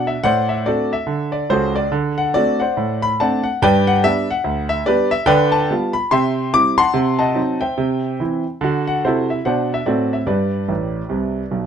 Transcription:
Already playing: B2 D4
0.07 E5
0.23 A2 C5 D5 F#5
0.49 E5
0.66 A3 C4 D4 F#4 A4 D5
0.93 E5
1.07 D3
1.32 D5
1.50 C#2 C#3 F#4 A4 C5
1.76 D5
1.92 D3
2.18 F#5
2.34 A3 C4 D4 F#4 A4 D5
2.60 C5 D5 F#5
2.77 A2
3.02 B5
3.20 A3 C4 D4 D5 F#5 A5
3.44 F#5
3.62 G2 B4 D5 G5
3.87 F#5
4.03 G3 B3 D4 E5
4.31 F#5
4.44 D2
4.69 E5
4.86 G3 B3 D4 G4 B4 D5
5.11 E5
5.26 D3 B4 D5 G5
5.52 A5
5.71 G3 B3 F4
5.93 B5
6.11 C3 E5 G5 C6
6.54 G3 C4 E4 D6
6.78 F#5 A5 C6
6.94 C3
7.19 D#5 F#5 A5
7.35 F#3 C4 D#4
7.61 C5 E5 G5
7.78 C3
8.20 E3 C4 E4
8.61 D3 F#4
8.87 F#5
9.05 C3 E4 F#4 A4 C5
9.30 E5
9.45 B2 D4 C5 D5 F#5
9.74 E5
9.86 A2 C4 F#4 A4 D5
10.13 E5
10.26 G2 G4 B4 D5
10.68 A1 A2
11.09 C2 C3
11.51 B1 B2

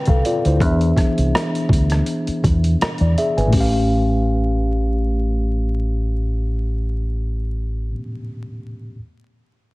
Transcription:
Already playing: D3 C4 B4 G5
0.06 C2 F5, kick, closed hi-hat
0.10 A4
0.25 F4 D5, closed hi-hat
0.45 D2 E4 C5, closed hi-hat
0.59 E2 E3 B3 D4, kick, closed hi-hat
0.64 G#4 E5
0.81 closed hi-hat
0.96 kick, cross-stick, closed hi-hat
1.18 C2, closed hi-hat
1.35 cross-stick, closed hi-hat
1.55 closed hi-hat
1.69 D2, kick, closed hi-hat
1.90 cross-stick, closed hi-hat
2.06 closed hi-hat
2.27 muted fingered electric bass stroke, closed hi-hat
2.44 E2, kick, closed hi-hat
2.64 closed hi-hat
2.81 muted fingered electric bass stroke, cross-stick, closed hi-hat
2.98 E2 D5, closed hi-hat
3.18 G#4 E5, closed hi-hat
3.37 G#1 B4 G#5, closed hi-hat
3.47 A2 A3
3.53 A1 C#4, kick, open hi-hat
3.57 G4 F5

